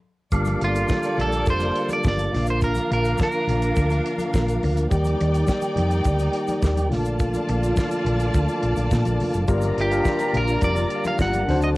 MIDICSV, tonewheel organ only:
0, 0, Header, 1, 2, 480
1, 0, Start_track
1, 0, Tempo, 572519
1, 272, Time_signature, 4, 2, 24, 8
1, 9871, End_track
2, 0, Start_track
2, 0, Title_t, "Tonewheel organ"
2, 0, Program_c, 0, 16
2, 271, Note_on_c, 0, 65, 79
2, 272, Note_on_c, 0, 58, 61
2, 273, Note_on_c, 0, 55, 61
2, 274, Note_on_c, 0, 50, 76
2, 1941, Note_off_c, 0, 50, 0
2, 1941, Note_off_c, 0, 55, 0
2, 1958, Note_on_c, 0, 50, 65
2, 1962, Note_on_c, 0, 53, 69
2, 4084, Note_off_c, 0, 65, 0
2, 4097, Note_off_c, 0, 50, 0
2, 4099, Note_off_c, 0, 53, 0
2, 4107, Note_on_c, 0, 55, 68
2, 4108, Note_on_c, 0, 51, 67
2, 4110, Note_on_c, 0, 74, 67
2, 4112, Note_on_c, 0, 67, 82
2, 5775, Note_off_c, 0, 51, 0
2, 5775, Note_off_c, 0, 55, 0
2, 5776, Note_off_c, 0, 74, 0
2, 5777, Note_off_c, 0, 67, 0
2, 5781, Note_on_c, 0, 65, 77
2, 5783, Note_on_c, 0, 50, 77
2, 5785, Note_on_c, 0, 53, 65
2, 5788, Note_on_c, 0, 57, 67
2, 7919, Note_off_c, 0, 58, 0
2, 7925, Note_off_c, 0, 53, 0
2, 7927, Note_off_c, 0, 57, 0
2, 7949, Note_on_c, 0, 55, 61
2, 7954, Note_on_c, 0, 58, 63
2, 9586, Note_off_c, 0, 65, 0
2, 9609, Note_off_c, 0, 55, 0
2, 9611, Note_off_c, 0, 58, 0
2, 9625, Note_on_c, 0, 60, 64
2, 9634, Note_on_c, 0, 54, 70
2, 9636, Note_on_c, 0, 66, 82
2, 9871, Note_off_c, 0, 50, 0
2, 9871, Note_off_c, 0, 54, 0
2, 9871, Note_off_c, 0, 60, 0
2, 9871, Note_off_c, 0, 66, 0
2, 9871, End_track
0, 0, End_of_file